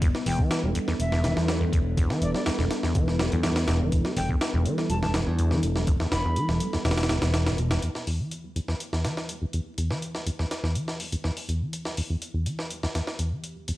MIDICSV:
0, 0, Header, 1, 6, 480
1, 0, Start_track
1, 0, Key_signature, 1, "minor"
1, 0, Tempo, 487805
1, 22, Time_signature, 4, 2, 24, 8
1, 13553, End_track
2, 0, Start_track
2, 0, Title_t, "Flute"
2, 0, Program_c, 0, 73
2, 268, Note_on_c, 0, 79, 88
2, 385, Note_off_c, 0, 79, 0
2, 983, Note_on_c, 0, 76, 89
2, 1346, Note_off_c, 0, 76, 0
2, 2184, Note_on_c, 0, 74, 85
2, 2263, Note_off_c, 0, 74, 0
2, 2309, Note_on_c, 0, 74, 76
2, 2381, Note_off_c, 0, 74, 0
2, 4104, Note_on_c, 0, 79, 91
2, 4223, Note_off_c, 0, 79, 0
2, 4820, Note_on_c, 0, 81, 88
2, 4900, Note_off_c, 0, 81, 0
2, 4943, Note_on_c, 0, 81, 74
2, 5019, Note_off_c, 0, 81, 0
2, 6019, Note_on_c, 0, 83, 93
2, 6385, Note_off_c, 0, 83, 0
2, 13553, End_track
3, 0, Start_track
3, 0, Title_t, "Analog synth pad"
3, 0, Program_c, 1, 89
3, 0, Note_on_c, 1, 55, 82
3, 0, Note_on_c, 1, 59, 75
3, 24, Note_on_c, 1, 69, 93
3, 26, Note_on_c, 1, 62, 76
3, 7664, Note_off_c, 1, 55, 0
3, 7664, Note_off_c, 1, 59, 0
3, 7665, Note_off_c, 1, 62, 0
3, 7688, Note_off_c, 1, 69, 0
3, 7704, Note_on_c, 1, 55, 79
3, 7705, Note_on_c, 1, 59, 74
3, 7706, Note_on_c, 1, 64, 74
3, 7706, Note_on_c, 1, 71, 86
3, 11530, Note_off_c, 1, 71, 0
3, 11551, Note_on_c, 1, 67, 88
3, 13553, Note_off_c, 1, 55, 0
3, 13553, Note_off_c, 1, 59, 0
3, 13553, Note_off_c, 1, 64, 0
3, 13553, Note_off_c, 1, 67, 0
3, 13553, End_track
4, 0, Start_track
4, 0, Title_t, "Acid bass"
4, 0, Program_c, 2, 38
4, 18, Note_on_c, 2, 40, 83
4, 88, Note_off_c, 2, 40, 0
4, 260, Note_on_c, 2, 40, 76
4, 381, Note_on_c, 2, 52, 77
4, 396, Note_off_c, 2, 40, 0
4, 626, Note_on_c, 2, 55, 78
4, 641, Note_off_c, 2, 52, 0
4, 690, Note_off_c, 2, 55, 0
4, 740, Note_on_c, 2, 40, 74
4, 782, Note_off_c, 2, 40, 0
4, 864, Note_on_c, 2, 40, 74
4, 929, Note_off_c, 2, 40, 0
4, 1107, Note_on_c, 2, 40, 76
4, 1219, Note_on_c, 2, 52, 77
4, 1233, Note_off_c, 2, 40, 0
4, 1461, Note_on_c, 2, 55, 81
4, 1476, Note_off_c, 2, 52, 0
4, 1530, Note_off_c, 2, 55, 0
4, 1580, Note_on_c, 2, 40, 75
4, 1621, Note_off_c, 2, 40, 0
4, 1697, Note_on_c, 2, 40, 75
4, 1767, Note_off_c, 2, 40, 0
4, 1941, Note_on_c, 2, 40, 85
4, 2062, Note_on_c, 2, 52, 76
4, 2077, Note_off_c, 2, 40, 0
4, 2306, Note_on_c, 2, 55, 77
4, 2321, Note_off_c, 2, 52, 0
4, 2370, Note_off_c, 2, 55, 0
4, 2427, Note_on_c, 2, 40, 80
4, 2465, Note_off_c, 2, 40, 0
4, 2546, Note_on_c, 2, 40, 78
4, 2610, Note_off_c, 2, 40, 0
4, 2787, Note_on_c, 2, 40, 78
4, 2904, Note_on_c, 2, 52, 83
4, 2919, Note_off_c, 2, 40, 0
4, 3144, Note_on_c, 2, 55, 76
4, 3159, Note_off_c, 2, 52, 0
4, 3211, Note_off_c, 2, 55, 0
4, 3272, Note_on_c, 2, 40, 75
4, 3307, Note_off_c, 2, 40, 0
4, 3385, Note_on_c, 2, 40, 82
4, 3452, Note_off_c, 2, 40, 0
4, 3623, Note_on_c, 2, 40, 78
4, 3746, Note_on_c, 2, 52, 74
4, 3761, Note_off_c, 2, 40, 0
4, 3986, Note_on_c, 2, 55, 75
4, 4001, Note_off_c, 2, 52, 0
4, 4050, Note_off_c, 2, 55, 0
4, 4102, Note_on_c, 2, 40, 75
4, 4143, Note_off_c, 2, 40, 0
4, 4230, Note_on_c, 2, 40, 76
4, 4292, Note_off_c, 2, 40, 0
4, 4468, Note_on_c, 2, 40, 78
4, 4587, Note_on_c, 2, 52, 78
4, 4601, Note_off_c, 2, 40, 0
4, 4821, Note_on_c, 2, 55, 84
4, 4836, Note_off_c, 2, 52, 0
4, 4890, Note_off_c, 2, 55, 0
4, 4950, Note_on_c, 2, 40, 78
4, 4986, Note_off_c, 2, 40, 0
4, 5065, Note_on_c, 2, 40, 77
4, 5131, Note_off_c, 2, 40, 0
4, 5304, Note_on_c, 2, 40, 81
4, 5432, Note_on_c, 2, 52, 79
4, 5446, Note_off_c, 2, 40, 0
4, 5670, Note_on_c, 2, 55, 77
4, 5685, Note_off_c, 2, 52, 0
4, 5732, Note_off_c, 2, 55, 0
4, 5785, Note_on_c, 2, 40, 81
4, 5824, Note_off_c, 2, 40, 0
4, 5909, Note_on_c, 2, 40, 78
4, 5971, Note_off_c, 2, 40, 0
4, 6148, Note_on_c, 2, 40, 76
4, 6265, Note_on_c, 2, 52, 78
4, 6280, Note_off_c, 2, 40, 0
4, 6501, Note_on_c, 2, 55, 78
4, 6516, Note_off_c, 2, 52, 0
4, 6570, Note_off_c, 2, 55, 0
4, 6630, Note_on_c, 2, 40, 77
4, 6666, Note_off_c, 2, 40, 0
4, 6741, Note_on_c, 2, 40, 87
4, 6809, Note_off_c, 2, 40, 0
4, 6986, Note_on_c, 2, 40, 78
4, 7052, Note_off_c, 2, 40, 0
4, 7105, Note_on_c, 2, 40, 79
4, 7347, Note_on_c, 2, 43, 100
4, 7362, Note_off_c, 2, 40, 0
4, 7410, Note_off_c, 2, 43, 0
4, 7465, Note_on_c, 2, 47, 78
4, 7586, Note_on_c, 2, 38, 77
4, 7601, Note_off_c, 2, 47, 0
4, 7650, Note_off_c, 2, 38, 0
4, 7703, Note_on_c, 2, 40, 77
4, 7771, Note_off_c, 2, 40, 0
4, 7941, Note_on_c, 2, 40, 75
4, 8065, Note_on_c, 2, 52, 73
4, 8080, Note_off_c, 2, 40, 0
4, 8304, Note_on_c, 2, 55, 74
4, 8319, Note_off_c, 2, 52, 0
4, 8369, Note_off_c, 2, 55, 0
4, 8420, Note_on_c, 2, 40, 71
4, 8462, Note_off_c, 2, 40, 0
4, 8543, Note_on_c, 2, 40, 75
4, 8608, Note_off_c, 2, 40, 0
4, 8785, Note_on_c, 2, 40, 72
4, 8903, Note_on_c, 2, 52, 72
4, 8918, Note_off_c, 2, 40, 0
4, 9143, Note_on_c, 2, 55, 78
4, 9157, Note_off_c, 2, 52, 0
4, 9210, Note_off_c, 2, 55, 0
4, 9266, Note_on_c, 2, 40, 73
4, 9304, Note_off_c, 2, 40, 0
4, 9382, Note_on_c, 2, 40, 72
4, 9450, Note_off_c, 2, 40, 0
4, 9620, Note_on_c, 2, 40, 79
4, 9742, Note_on_c, 2, 52, 71
4, 9757, Note_off_c, 2, 40, 0
4, 9985, Note_on_c, 2, 55, 73
4, 10000, Note_off_c, 2, 52, 0
4, 10049, Note_off_c, 2, 55, 0
4, 10098, Note_on_c, 2, 40, 76
4, 10141, Note_off_c, 2, 40, 0
4, 10227, Note_on_c, 2, 40, 76
4, 10290, Note_off_c, 2, 40, 0
4, 10463, Note_on_c, 2, 40, 74
4, 10582, Note_on_c, 2, 52, 79
4, 10596, Note_off_c, 2, 40, 0
4, 10822, Note_on_c, 2, 55, 73
4, 10836, Note_off_c, 2, 52, 0
4, 10890, Note_off_c, 2, 55, 0
4, 10944, Note_on_c, 2, 40, 74
4, 10983, Note_off_c, 2, 40, 0
4, 11062, Note_on_c, 2, 40, 75
4, 11130, Note_off_c, 2, 40, 0
4, 11302, Note_on_c, 2, 40, 73
4, 11427, Note_on_c, 2, 52, 72
4, 11442, Note_off_c, 2, 40, 0
4, 11671, Note_on_c, 2, 55, 74
4, 11686, Note_off_c, 2, 52, 0
4, 11732, Note_off_c, 2, 55, 0
4, 11785, Note_on_c, 2, 40, 72
4, 11824, Note_off_c, 2, 40, 0
4, 11905, Note_on_c, 2, 40, 75
4, 11969, Note_off_c, 2, 40, 0
4, 12142, Note_on_c, 2, 40, 76
4, 12259, Note_on_c, 2, 52, 72
4, 12274, Note_off_c, 2, 40, 0
4, 12499, Note_on_c, 2, 55, 79
4, 12514, Note_off_c, 2, 52, 0
4, 12569, Note_off_c, 2, 55, 0
4, 12626, Note_on_c, 2, 40, 71
4, 12664, Note_off_c, 2, 40, 0
4, 12741, Note_on_c, 2, 40, 72
4, 12810, Note_off_c, 2, 40, 0
4, 12979, Note_on_c, 2, 40, 76
4, 13104, Note_on_c, 2, 52, 73
4, 13119, Note_off_c, 2, 40, 0
4, 13343, Note_on_c, 2, 55, 72
4, 13358, Note_off_c, 2, 52, 0
4, 13408, Note_off_c, 2, 55, 0
4, 13462, Note_on_c, 2, 40, 77
4, 13503, Note_off_c, 2, 40, 0
4, 13553, End_track
5, 0, Start_track
5, 0, Title_t, "Picked electric bass"
5, 0, Program_c, 3, 34
5, 0, Note_on_c, 3, 28, 94
5, 104, Note_off_c, 3, 28, 0
5, 258, Note_on_c, 3, 28, 95
5, 359, Note_off_c, 3, 28, 0
5, 627, Note_on_c, 3, 28, 83
5, 719, Note_off_c, 3, 28, 0
5, 981, Note_on_c, 3, 28, 89
5, 1305, Note_off_c, 3, 28, 0
5, 1347, Note_on_c, 3, 40, 86
5, 1665, Note_off_c, 3, 40, 0
5, 1702, Note_on_c, 3, 28, 78
5, 2026, Note_off_c, 3, 28, 0
5, 2182, Note_on_c, 3, 28, 96
5, 2281, Note_off_c, 3, 28, 0
5, 2545, Note_on_c, 3, 28, 83
5, 2638, Note_off_c, 3, 28, 0
5, 2902, Note_on_c, 3, 28, 94
5, 3226, Note_off_c, 3, 28, 0
5, 3270, Note_on_c, 3, 40, 90
5, 3586, Note_off_c, 3, 40, 0
5, 3621, Note_on_c, 3, 28, 82
5, 3945, Note_off_c, 3, 28, 0
5, 4100, Note_on_c, 3, 28, 99
5, 4200, Note_off_c, 3, 28, 0
5, 4465, Note_on_c, 3, 28, 83
5, 4558, Note_off_c, 3, 28, 0
5, 4821, Note_on_c, 3, 28, 94
5, 5145, Note_off_c, 3, 28, 0
5, 5184, Note_on_c, 3, 40, 90
5, 5503, Note_off_c, 3, 40, 0
5, 5541, Note_on_c, 3, 28, 80
5, 5865, Note_off_c, 3, 28, 0
5, 6020, Note_on_c, 3, 28, 101
5, 6120, Note_off_c, 3, 28, 0
5, 6385, Note_on_c, 3, 28, 84
5, 6478, Note_off_c, 3, 28, 0
5, 6740, Note_on_c, 3, 28, 94
5, 7065, Note_off_c, 3, 28, 0
5, 7104, Note_on_c, 3, 28, 101
5, 7423, Note_off_c, 3, 28, 0
5, 7459, Note_on_c, 3, 28, 103
5, 7653, Note_off_c, 3, 28, 0
5, 13553, End_track
6, 0, Start_track
6, 0, Title_t, "Drums"
6, 18, Note_on_c, 9, 42, 90
6, 19, Note_on_c, 9, 36, 112
6, 117, Note_off_c, 9, 36, 0
6, 117, Note_off_c, 9, 42, 0
6, 145, Note_on_c, 9, 38, 43
6, 244, Note_off_c, 9, 38, 0
6, 258, Note_on_c, 9, 46, 81
6, 357, Note_off_c, 9, 46, 0
6, 383, Note_on_c, 9, 36, 93
6, 482, Note_off_c, 9, 36, 0
6, 499, Note_on_c, 9, 38, 111
6, 499, Note_on_c, 9, 42, 85
6, 598, Note_off_c, 9, 38, 0
6, 598, Note_off_c, 9, 42, 0
6, 739, Note_on_c, 9, 42, 70
6, 837, Note_off_c, 9, 42, 0
6, 864, Note_on_c, 9, 38, 45
6, 962, Note_off_c, 9, 38, 0
6, 981, Note_on_c, 9, 42, 85
6, 1079, Note_off_c, 9, 42, 0
6, 1104, Note_on_c, 9, 38, 45
6, 1203, Note_off_c, 9, 38, 0
6, 1220, Note_on_c, 9, 38, 56
6, 1220, Note_on_c, 9, 42, 68
6, 1318, Note_off_c, 9, 38, 0
6, 1318, Note_off_c, 9, 42, 0
6, 1346, Note_on_c, 9, 38, 52
6, 1445, Note_off_c, 9, 38, 0
6, 1460, Note_on_c, 9, 38, 117
6, 1460, Note_on_c, 9, 42, 86
6, 1558, Note_off_c, 9, 38, 0
6, 1558, Note_off_c, 9, 42, 0
6, 1702, Note_on_c, 9, 36, 94
6, 1703, Note_on_c, 9, 42, 69
6, 1800, Note_off_c, 9, 36, 0
6, 1801, Note_off_c, 9, 42, 0
6, 1943, Note_on_c, 9, 36, 110
6, 1943, Note_on_c, 9, 42, 88
6, 2041, Note_off_c, 9, 36, 0
6, 2041, Note_off_c, 9, 42, 0
6, 2069, Note_on_c, 9, 38, 44
6, 2168, Note_off_c, 9, 38, 0
6, 2182, Note_on_c, 9, 42, 68
6, 2281, Note_off_c, 9, 42, 0
6, 2308, Note_on_c, 9, 38, 39
6, 2406, Note_off_c, 9, 38, 0
6, 2421, Note_on_c, 9, 38, 116
6, 2421, Note_on_c, 9, 42, 85
6, 2520, Note_off_c, 9, 38, 0
6, 2520, Note_off_c, 9, 42, 0
6, 2545, Note_on_c, 9, 38, 38
6, 2644, Note_off_c, 9, 38, 0
6, 2662, Note_on_c, 9, 38, 56
6, 2662, Note_on_c, 9, 42, 69
6, 2761, Note_off_c, 9, 38, 0
6, 2761, Note_off_c, 9, 42, 0
6, 2787, Note_on_c, 9, 38, 41
6, 2886, Note_off_c, 9, 38, 0
6, 2903, Note_on_c, 9, 36, 112
6, 2903, Note_on_c, 9, 42, 88
6, 3001, Note_off_c, 9, 36, 0
6, 3001, Note_off_c, 9, 42, 0
6, 3030, Note_on_c, 9, 38, 37
6, 3128, Note_off_c, 9, 38, 0
6, 3143, Note_on_c, 9, 38, 115
6, 3143, Note_on_c, 9, 42, 67
6, 3241, Note_off_c, 9, 38, 0
6, 3241, Note_off_c, 9, 42, 0
6, 3267, Note_on_c, 9, 42, 44
6, 3365, Note_off_c, 9, 42, 0
6, 3379, Note_on_c, 9, 38, 106
6, 3379, Note_on_c, 9, 42, 79
6, 3478, Note_off_c, 9, 38, 0
6, 3478, Note_off_c, 9, 42, 0
6, 3503, Note_on_c, 9, 38, 101
6, 3503, Note_on_c, 9, 42, 78
6, 3601, Note_off_c, 9, 38, 0
6, 3601, Note_off_c, 9, 42, 0
6, 3618, Note_on_c, 9, 38, 105
6, 3618, Note_on_c, 9, 42, 79
6, 3716, Note_off_c, 9, 38, 0
6, 3716, Note_off_c, 9, 42, 0
6, 3859, Note_on_c, 9, 36, 108
6, 3859, Note_on_c, 9, 42, 90
6, 3957, Note_off_c, 9, 42, 0
6, 3958, Note_off_c, 9, 36, 0
6, 3983, Note_on_c, 9, 38, 44
6, 4082, Note_off_c, 9, 38, 0
6, 4099, Note_on_c, 9, 46, 82
6, 4198, Note_off_c, 9, 46, 0
6, 4224, Note_on_c, 9, 36, 91
6, 4322, Note_off_c, 9, 36, 0
6, 4341, Note_on_c, 9, 38, 113
6, 4341, Note_on_c, 9, 42, 83
6, 4439, Note_off_c, 9, 38, 0
6, 4439, Note_off_c, 9, 42, 0
6, 4581, Note_on_c, 9, 42, 68
6, 4679, Note_off_c, 9, 42, 0
6, 4704, Note_on_c, 9, 38, 45
6, 4802, Note_off_c, 9, 38, 0
6, 4818, Note_on_c, 9, 42, 89
6, 4917, Note_off_c, 9, 42, 0
6, 4946, Note_on_c, 9, 38, 45
6, 5044, Note_off_c, 9, 38, 0
6, 5057, Note_on_c, 9, 38, 104
6, 5057, Note_on_c, 9, 42, 79
6, 5156, Note_off_c, 9, 38, 0
6, 5156, Note_off_c, 9, 42, 0
6, 5300, Note_on_c, 9, 42, 62
6, 5398, Note_off_c, 9, 42, 0
6, 5422, Note_on_c, 9, 38, 40
6, 5521, Note_off_c, 9, 38, 0
6, 5540, Note_on_c, 9, 42, 80
6, 5638, Note_off_c, 9, 42, 0
6, 5664, Note_on_c, 9, 38, 41
6, 5763, Note_off_c, 9, 38, 0
6, 5778, Note_on_c, 9, 42, 91
6, 5780, Note_on_c, 9, 36, 114
6, 5876, Note_off_c, 9, 42, 0
6, 5878, Note_off_c, 9, 36, 0
6, 5904, Note_on_c, 9, 38, 45
6, 6002, Note_off_c, 9, 38, 0
6, 6019, Note_on_c, 9, 38, 104
6, 6019, Note_on_c, 9, 42, 81
6, 6118, Note_off_c, 9, 38, 0
6, 6118, Note_off_c, 9, 42, 0
6, 6260, Note_on_c, 9, 42, 60
6, 6359, Note_off_c, 9, 42, 0
6, 6384, Note_on_c, 9, 38, 43
6, 6482, Note_off_c, 9, 38, 0
6, 6498, Note_on_c, 9, 42, 82
6, 6596, Note_off_c, 9, 42, 0
6, 6624, Note_on_c, 9, 38, 39
6, 6723, Note_off_c, 9, 38, 0
6, 6740, Note_on_c, 9, 38, 87
6, 6740, Note_on_c, 9, 42, 67
6, 6801, Note_off_c, 9, 38, 0
6, 6801, Note_off_c, 9, 42, 0
6, 6801, Note_on_c, 9, 38, 92
6, 6801, Note_on_c, 9, 42, 68
6, 6863, Note_off_c, 9, 38, 0
6, 6863, Note_off_c, 9, 42, 0
6, 6863, Note_on_c, 9, 38, 89
6, 6863, Note_on_c, 9, 42, 69
6, 6919, Note_off_c, 9, 38, 0
6, 6919, Note_off_c, 9, 42, 0
6, 6919, Note_on_c, 9, 38, 89
6, 6919, Note_on_c, 9, 42, 68
6, 6980, Note_off_c, 9, 38, 0
6, 6980, Note_off_c, 9, 42, 0
6, 6980, Note_on_c, 9, 38, 105
6, 6980, Note_on_c, 9, 42, 77
6, 7078, Note_off_c, 9, 38, 0
6, 7078, Note_off_c, 9, 42, 0
6, 7103, Note_on_c, 9, 38, 101
6, 7103, Note_on_c, 9, 42, 79
6, 7202, Note_off_c, 9, 38, 0
6, 7202, Note_off_c, 9, 42, 0
6, 7220, Note_on_c, 9, 38, 103
6, 7220, Note_on_c, 9, 42, 82
6, 7318, Note_off_c, 9, 38, 0
6, 7318, Note_off_c, 9, 42, 0
6, 7345, Note_on_c, 9, 38, 105
6, 7345, Note_on_c, 9, 42, 77
6, 7444, Note_off_c, 9, 38, 0
6, 7444, Note_off_c, 9, 42, 0
6, 7460, Note_on_c, 9, 42, 62
6, 7559, Note_off_c, 9, 42, 0
6, 7584, Note_on_c, 9, 38, 106
6, 7584, Note_on_c, 9, 42, 76
6, 7683, Note_off_c, 9, 38, 0
6, 7683, Note_off_c, 9, 42, 0
6, 7699, Note_on_c, 9, 42, 80
6, 7797, Note_off_c, 9, 42, 0
6, 7825, Note_on_c, 9, 38, 39
6, 7923, Note_off_c, 9, 38, 0
6, 7942, Note_on_c, 9, 46, 72
6, 8040, Note_off_c, 9, 46, 0
6, 8181, Note_on_c, 9, 42, 78
6, 8280, Note_off_c, 9, 42, 0
6, 8424, Note_on_c, 9, 42, 63
6, 8522, Note_off_c, 9, 42, 0
6, 8545, Note_on_c, 9, 38, 41
6, 8643, Note_off_c, 9, 38, 0
6, 8662, Note_on_c, 9, 42, 80
6, 8761, Note_off_c, 9, 42, 0
6, 8787, Note_on_c, 9, 38, 40
6, 8886, Note_off_c, 9, 38, 0
6, 8901, Note_on_c, 9, 38, 52
6, 8901, Note_on_c, 9, 42, 61
6, 9000, Note_off_c, 9, 38, 0
6, 9000, Note_off_c, 9, 42, 0
6, 9026, Note_on_c, 9, 38, 46
6, 9125, Note_off_c, 9, 38, 0
6, 9142, Note_on_c, 9, 42, 81
6, 9240, Note_off_c, 9, 42, 0
6, 9380, Note_on_c, 9, 42, 60
6, 9479, Note_off_c, 9, 42, 0
6, 9622, Note_on_c, 9, 42, 82
6, 9720, Note_off_c, 9, 42, 0
6, 9747, Note_on_c, 9, 38, 41
6, 9846, Note_off_c, 9, 38, 0
6, 9863, Note_on_c, 9, 42, 62
6, 9961, Note_off_c, 9, 42, 0
6, 9984, Note_on_c, 9, 38, 36
6, 10082, Note_off_c, 9, 38, 0
6, 10101, Note_on_c, 9, 42, 77
6, 10199, Note_off_c, 9, 42, 0
6, 10227, Note_on_c, 9, 38, 35
6, 10325, Note_off_c, 9, 38, 0
6, 10343, Note_on_c, 9, 38, 51
6, 10343, Note_on_c, 9, 42, 63
6, 10441, Note_off_c, 9, 38, 0
6, 10441, Note_off_c, 9, 42, 0
6, 10468, Note_on_c, 9, 38, 37
6, 10567, Note_off_c, 9, 38, 0
6, 10582, Note_on_c, 9, 42, 72
6, 10681, Note_off_c, 9, 42, 0
6, 10706, Note_on_c, 9, 38, 36
6, 10804, Note_off_c, 9, 38, 0
6, 10823, Note_on_c, 9, 46, 68
6, 10921, Note_off_c, 9, 46, 0
6, 10947, Note_on_c, 9, 42, 71
6, 11045, Note_off_c, 9, 42, 0
6, 11061, Note_on_c, 9, 38, 37
6, 11159, Note_off_c, 9, 38, 0
6, 11186, Note_on_c, 9, 46, 63
6, 11284, Note_off_c, 9, 46, 0
6, 11305, Note_on_c, 9, 42, 62
6, 11403, Note_off_c, 9, 42, 0
6, 11543, Note_on_c, 9, 42, 82
6, 11641, Note_off_c, 9, 42, 0
6, 11663, Note_on_c, 9, 38, 39
6, 11762, Note_off_c, 9, 38, 0
6, 11781, Note_on_c, 9, 46, 72
6, 11879, Note_off_c, 9, 46, 0
6, 12022, Note_on_c, 9, 42, 78
6, 12120, Note_off_c, 9, 42, 0
6, 12262, Note_on_c, 9, 42, 62
6, 12361, Note_off_c, 9, 42, 0
6, 12387, Note_on_c, 9, 38, 42
6, 12485, Note_off_c, 9, 38, 0
6, 12502, Note_on_c, 9, 42, 80
6, 12600, Note_off_c, 9, 42, 0
6, 12628, Note_on_c, 9, 38, 41
6, 12726, Note_off_c, 9, 38, 0
6, 12744, Note_on_c, 9, 38, 51
6, 12744, Note_on_c, 9, 42, 62
6, 12842, Note_off_c, 9, 38, 0
6, 12842, Note_off_c, 9, 42, 0
6, 12864, Note_on_c, 9, 38, 47
6, 12963, Note_off_c, 9, 38, 0
6, 12979, Note_on_c, 9, 42, 79
6, 13077, Note_off_c, 9, 42, 0
6, 13221, Note_on_c, 9, 42, 62
6, 13319, Note_off_c, 9, 42, 0
6, 13460, Note_on_c, 9, 42, 80
6, 13553, Note_off_c, 9, 42, 0
6, 13553, End_track
0, 0, End_of_file